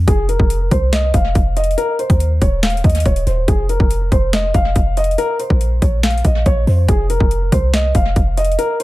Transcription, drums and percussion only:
0.08 kick, closed hi-hat
0.29 closed hi-hat
0.40 kick
0.50 closed hi-hat
0.71 kick, closed hi-hat
0.93 snare, closed hi-hat
1.14 kick, closed hi-hat
1.35 kick, closed hi-hat
1.57 closed hi-hat
1.64 closed hi-hat
1.71 closed hi-hat
1.78 closed hi-hat
1.99 closed hi-hat
2.10 kick, closed hi-hat
2.20 closed hi-hat
2.42 kick, closed hi-hat
2.63 snare, closed hi-hat
2.70 closed hi-hat
2.77 closed hi-hat
2.84 kick, closed hi-hat
2.90 closed hi-hat
2.95 closed hi-hat
3.00 closed hi-hat
3.06 kick, closed hi-hat
3.16 closed hi-hat
3.27 closed hi-hat
3.48 kick, closed hi-hat
3.69 closed hi-hat
3.80 kick
3.91 closed hi-hat
4.12 kick, closed hi-hat
4.33 snare, closed hi-hat
4.54 kick, closed hi-hat
4.76 kick, closed hi-hat
4.97 closed hi-hat
5.04 closed hi-hat
5.11 closed hi-hat
5.18 closed hi-hat
5.40 closed hi-hat
5.50 kick
5.61 closed hi-hat
5.82 kick, closed hi-hat
6.03 snare, closed hi-hat
6.11 closed hi-hat
6.18 closed hi-hat
6.25 kick, closed hi-hat
6.46 kick, closed hi-hat
6.67 open hi-hat
6.88 kick, closed hi-hat
7.10 closed hi-hat
7.20 kick
7.31 closed hi-hat
7.52 kick, closed hi-hat
7.74 snare, closed hi-hat
7.95 kick, closed hi-hat
8.16 kick, closed hi-hat
8.37 closed hi-hat
8.45 closed hi-hat
8.52 closed hi-hat
8.59 closed hi-hat
8.80 closed hi-hat

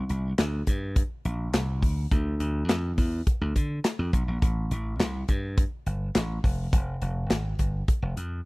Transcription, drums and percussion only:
0.09 closed hi-hat
0.39 snare, clap, closed hi-hat
0.67 kick, closed hi-hat
0.96 kick, closed hi-hat
1.25 closed hi-hat
1.54 snare, clap, closed hi-hat
1.82 kick, open hi-hat
2.11 kick, closed hi-hat
2.40 closed hi-hat
2.69 snare, clap, closed hi-hat
2.98 kick, open hi-hat
3.27 kick, closed hi-hat
3.56 kick, closed hi-hat
3.84 snare, clap, closed hi-hat
4.13 kick, closed hi-hat
4.42 kick, closed hi-hat
4.71 closed hi-hat
5.00 snare, clap, closed hi-hat
5.28 kick, closed hi-hat
5.58 kick, closed hi-hat
5.87 closed hi-hat
6.15 snare, clap, closed hi-hat
6.44 kick, open hi-hat
6.73 kick, closed hi-hat
7.02 closed hi-hat
7.30 snare, clap, closed hi-hat
7.59 kick, closed hi-hat
7.88 kick, closed hi-hat
8.17 closed hi-hat

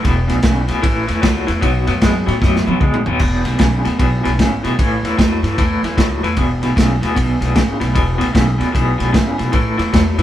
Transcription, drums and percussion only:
0.05 kick, snare, ride
0.29 snare, ride
0.43 kick, snare, ride
0.68 snare, ride
0.83 kick, ride
1.08 snare, ride
1.23 kick, snare, ride
1.48 snare, ride
1.62 kick, ride
1.87 snare, ride
2.01 kick, snare, ride
2.28 snare, ride
2.42 kick, snare
2.56 snare
2.69 high tom
2.81 kick, mid tom
2.94 mid tom
3.06 floor tom
3.19 kick, snare, crash
3.45 snare, ride
3.59 kick, snare, ride
3.85 snare, ride
3.99 kick, ride
4.25 snare, ride
4.39 kick, snare, ride
4.64 snare, ride
4.79 kick, ride
5.05 snare, ride
5.19 kick, snare, ride
5.44 snare, ride
5.58 kick, snare, ride
5.84 snare, ride
5.98 kick, snare, ride
6.24 snare, ride
6.37 kick, ride
6.63 snare, ride
6.77 kick, snare, ride
7.03 snare, ride
7.17 kick, ride
7.42 snare, ride
7.56 kick, snare, ride
7.81 snare, ride
7.95 kick, ride
8.21 snare, ride
8.35 kick, snare, ride
8.61 snare, ride
8.75 kick, snare, ride
9.00 snare, ride
9.14 kick, snare, ride
9.39 snare, ride
9.53 kick, ride
9.79 snare, ride
9.94 kick, snare, ride
10.19 ride

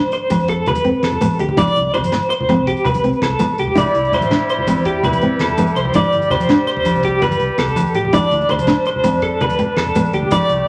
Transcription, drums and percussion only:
0.12 closed hi-hat
0.30 kick, closed hi-hat, high conga, low agogo, maracas
0.40 maracas
0.48 kick, closed hi-hat
0.66 closed hi-hat, low conga, low agogo, maracas
0.75 high conga, maracas
0.85 closed hi-hat
0.94 low conga
1.03 snare, closed hi-hat, low conga, low agogo
1.12 low conga, maracas
1.21 closed hi-hat, high conga, low agogo, maracas
1.30 maracas
1.39 closed hi-hat
1.49 low conga
1.57 kick, closed hi-hat, high conga, low agogo, maracas
1.67 maracas
1.76 closed hi-hat, low conga
1.94 closed hi-hat, low conga, low agogo
2.03 high conga, maracas
2.12 snare, closed hi-hat, low conga, low agogo
2.22 maracas
2.30 closed hi-hat
2.40 low conga
2.49 kick, snare, closed hi-hat, high conga, low agogo
2.67 kick, closed hi-hat
2.77 maracas
2.85 closed hi-hat, low conga, low agogo, maracas
2.94 high conga, maracas
3.04 closed hi-hat, low conga
3.13 maracas
3.22 kick, snare, closed hi-hat, low conga, low agogo
3.31 low conga
3.39 closed hi-hat, high conga, low agogo, maracas
3.58 closed hi-hat, maracas
3.67 low conga
3.77 kick, closed hi-hat, high conga, low agogo, maracas
3.95 closed hi-hat, maracas
4.05 maracas
4.12 closed hi-hat, low conga, low agogo
4.21 high conga, low conga, maracas
4.31 snare, closed hi-hat, low agogo
4.49 closed hi-hat
4.58 low conga
4.67 kick, closed hi-hat, high conga, low agogo, maracas
4.76 maracas
4.85 kick, closed hi-hat
5.03 closed hi-hat, low conga, low agogo, maracas
5.13 high conga, maracas
5.21 closed hi-hat
5.31 low conga
5.39 snare, closed hi-hat, low conga, low agogo
5.48 low conga, maracas
5.58 closed hi-hat, high conga, low agogo, maracas
5.67 maracas
5.76 closed hi-hat
5.85 low conga
5.94 kick, closed hi-hat, high conga, low agogo, maracas
6.12 closed hi-hat, maracas
6.22 maracas
6.30 closed hi-hat, low conga, low agogo
6.40 high conga, low conga, maracas
6.49 snare, closed hi-hat, low agogo
6.67 closed hi-hat
6.77 low conga
6.85 kick, closed hi-hat, high conga, low agogo, maracas
6.95 maracas
7.03 kick, closed hi-hat
7.22 closed hi-hat, low conga, low agogo, maracas
7.31 high conga, maracas
7.40 closed hi-hat
7.49 low conga
7.58 snare, closed hi-hat, low conga, low agogo
7.68 low conga, maracas
7.76 closed hi-hat, high conga, low agogo, maracas
7.86 maracas
7.94 closed hi-hat
8.05 low conga
8.13 kick, closed hi-hat, high conga, low agogo, maracas
8.22 maracas
8.31 closed hi-hat, maracas
8.41 maracas
8.49 closed hi-hat, low conga, low agogo
8.59 high conga, low conga, maracas
8.67 snare, closed hi-hat, low agogo
8.86 closed hi-hat
8.96 low conga
9.04 kick, closed hi-hat, high conga, low agogo, maracas
9.22 kick, closed hi-hat
9.40 closed hi-hat, low conga, low agogo, maracas
9.50 high conga, maracas
9.59 closed hi-hat
9.69 low conga
9.77 snare, closed hi-hat, low conga, low agogo
9.86 low conga, maracas
9.95 closed hi-hat, high conga, low agogo, maracas
10.05 maracas
10.13 closed hi-hat
10.23 low conga
10.31 kick, closed hi-hat, high conga, low agogo, maracas
10.41 maracas
10.50 closed hi-hat
10.60 low conga

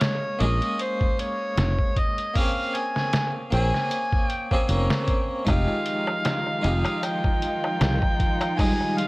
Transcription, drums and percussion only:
0.01 snare, closed hi-hat
0.41 closed hi-hat
0.62 closed hi-hat
0.79 closed hi-hat
1.01 kick
1.19 closed hi-hat
1.58 snare, closed hi-hat
1.79 kick
1.97 kick, closed hi-hat
2.18 closed hi-hat
2.35 kick, open hi-hat
2.75 closed hi-hat
2.96 snare
3.13 snare, closed hi-hat
3.52 closed hi-hat
3.74 snare
3.91 closed hi-hat
4.12 kick
4.29 closed hi-hat
4.51 kick
4.69 closed hi-hat
4.90 snare
5.08 kick, closed hi-hat
5.47 kick, closed hi-hat, darbuka tek
5.67 darbuka tek
5.86 closed hi-hat
6.07 darbuka tek
6.25 snare, closed hi-hat, darbuka tek
6.46 darbuka tek
6.64 closed hi-hat
6.85 closed hi-hat, darbuka tek
7.03 closed hi-hat, darbuka tek
7.24 kick, darbuka tek
7.42 closed hi-hat
7.64 darbuka tek
7.81 snare, closed hi-hat, darbuka tek
8.02 kick, darbuka tek
8.20 kick, closed hi-hat
8.41 closed hi-hat, darbuka tek
8.59 kick, open hi-hat, darbuka tek
8.80 darbuka tek
8.99 closed hi-hat

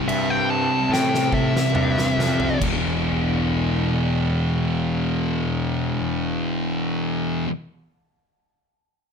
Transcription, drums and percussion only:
0.09 crash
0.94 snare
1.15 snare
1.32 kick
1.57 snare
1.75 mid tom
1.98 snare
2.20 snare
2.40 floor tom
2.62 kick, crash

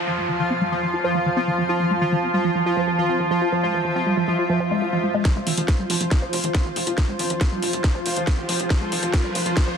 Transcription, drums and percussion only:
5.25 kick, snare, closed hi-hat
5.47 open hi-hat
5.57 closed hi-hat
5.68 kick, snare, closed hi-hat
5.90 open hi-hat
6.01 closed hi-hat
6.11 kick, snare, closed hi-hat
6.33 open hi-hat
6.44 closed hi-hat
6.55 kick, snare, closed hi-hat
6.76 open hi-hat
6.87 closed hi-hat
6.98 kick, snare, closed hi-hat
7.19 open hi-hat
7.30 closed hi-hat
7.41 kick, snare, closed hi-hat
7.62 open hi-hat
7.73 closed hi-hat
7.84 kick, snare, closed hi-hat
8.06 open hi-hat
8.16 closed hi-hat
8.27 kick, snare, closed hi-hat
8.49 open hi-hat
8.60 closed hi-hat
8.70 kick, snare, closed hi-hat
8.92 open hi-hat
9.03 closed hi-hat
9.14 kick, snare, closed hi-hat
9.35 open hi-hat
9.46 closed hi-hat
9.57 kick, snare, closed hi-hat

